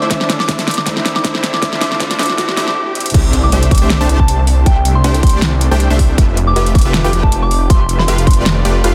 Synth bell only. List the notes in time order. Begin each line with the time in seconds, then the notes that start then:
0.40 D6
0.78 D6
1.16 D6
1.54 D6
1.62 D6
1.73 D6
1.81 D6
1.92 D6
2.00 D6
2.11 D6
2.19 D6
2.30 D6
2.38 D6
2.49 D6
2.57 D6
2.68 D6
3.44 D6
3.52 D6
3.71 D6
4.19 A5
4.66 G5
4.76 G5
4.95 C6
5.04 C6
5.23 C6
5.33 C6
6.47 D6
6.56 D6
6.75 D6
7.23 A5
7.42 D6
7.70 C6
7.80 C6
7.99 C6
8.27 C6
8.37 C6